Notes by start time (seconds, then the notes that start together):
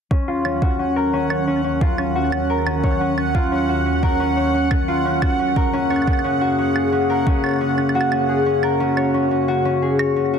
0.11 D#2 D#3 F#3 C#4 F#5, kick
0.28 F4
0.45 C#4, claves
0.62 F#4, kick
0.79 C#4
0.96 A#4
1.13 C#4
1.30 C#5, claves
1.47 C#4
1.64 C#4
1.81 F4, kick
1.98 C#4, claves
2.15 F#4
2.32 C#4, claves
2.50 A#4
2.67 C#4, claves
2.84 C#5, kick
3.01 C#4
3.18 C#4, claves
3.35 F4, kick
3.52 C#4
3.69 F#4
3.86 C#4
4.03 A#4, kick
4.20 C#4
4.37 C#5
4.54 C#4
4.71 C#4, kick, claves
4.88 F4
5.05 C#4
5.22 F#4, kick, claves
5.39 C#4
5.56 F#2 C#3 A#3 G#4 A#4, kick
5.73 C#4
5.90 C#5, claves
5.96 claves
6.02 claves
6.07 C#4, kick, claves
6.13 claves
6.19 claves
6.24 C#4
6.41 F#4
6.58 C#4
6.75 G#4, claves
6.92 C#4
7.10 A#4
7.27 C#4, kick
7.44 C#5, claves
7.46 claves
7.49 claves
7.54 claves
7.56 claves
7.58 C#4, claves
7.78 C#4, claves
7.89 claves
7.95 F#4
8.01 claves
8.12 C#4, claves
8.29 F#4 G#4
8.46 C#4
8.63 A#4, claves
8.80 C#4
8.97 C#5, claves
9.14 C#4
9.31 C#4
9.48 F#4
9.65 C#4
9.82 G#4
9.99 C#5, claves
10.16 C#4
10.33 F#4